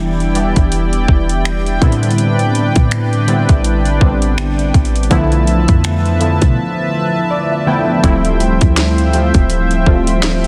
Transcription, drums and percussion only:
0.20 closed hi-hat
0.35 closed hi-hat
0.56 kick, closed hi-hat
0.72 closed hi-hat
0.93 closed hi-hat
1.08 kick
1.29 closed hi-hat
1.45 finger snap, closed hi-hat
1.66 closed hi-hat
1.82 kick, closed hi-hat
1.92 closed hi-hat
2.03 closed hi-hat
2.11 closed hi-hat
2.18 closed hi-hat
2.39 closed hi-hat
2.55 closed hi-hat
2.76 kick, closed hi-hat
2.91 finger snap, closed hi-hat
3.13 closed hi-hat
3.28 closed hi-hat
3.49 kick, closed hi-hat
3.64 closed hi-hat
3.85 closed hi-hat
4.01 kick
4.22 closed hi-hat
4.38 finger snap, closed hi-hat
4.59 closed hi-hat
4.74 kick, closed hi-hat
4.85 closed hi-hat
4.96 closed hi-hat
5.03 closed hi-hat
5.11 kick, closed hi-hat
5.32 closed hi-hat
5.47 closed hi-hat
5.68 kick, closed hi-hat
5.84 finger snap, closed hi-hat
6.06 closed hi-hat
6.21 closed hi-hat
6.42 kick, closed hi-hat
8.04 kick, closed hi-hat
8.25 closed hi-hat
8.40 closed hi-hat
8.61 kick, closed hi-hat
8.77 snare, closed hi-hat
8.98 closed hi-hat
9.13 closed hi-hat
9.34 kick, closed hi-hat
9.50 closed hi-hat
9.71 closed hi-hat
9.86 kick
10.07 closed hi-hat
10.23 snare, closed hi-hat
10.44 closed hi-hat

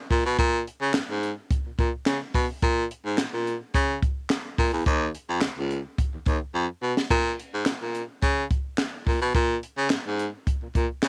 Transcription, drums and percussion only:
0.11 kick, open hi-hat
0.39 kick, closed hi-hat
0.67 closed hi-hat
0.94 snare, clap, closed hi-hat
1.23 closed hi-hat
1.51 kick, closed hi-hat
1.79 kick, closed hi-hat
2.06 snare, clap, closed hi-hat
2.35 kick, open hi-hat
2.62 kick, closed hi-hat
2.91 closed hi-hat
3.18 snare, clap, closed hi-hat
3.47 closed hi-hat
3.74 kick, closed hi-hat
4.03 kick, closed hi-hat
4.30 snare, clap, closed hi-hat
4.58 kick, open hi-hat
4.86 kick, closed hi-hat
5.15 closed hi-hat
5.41 snare, clap, closed hi-hat
5.71 closed hi-hat
5.98 kick, closed hi-hat
6.26 kick, closed hi-hat
6.97 snare
7.10 kick, crash
7.40 closed hi-hat
7.66 snare, clap, closed hi-hat
7.95 closed hi-hat
8.22 kick, closed hi-hat
8.51 kick, closed hi-hat
8.78 snare, clap, closed hi-hat
9.07 kick, open hi-hat
9.35 kick, closed hi-hat
9.63 closed hi-hat
9.90 snare, clap, closed hi-hat
10.19 closed hi-hat
10.47 kick, closed hi-hat
10.75 kick, closed hi-hat
11.03 snare, clap, closed hi-hat

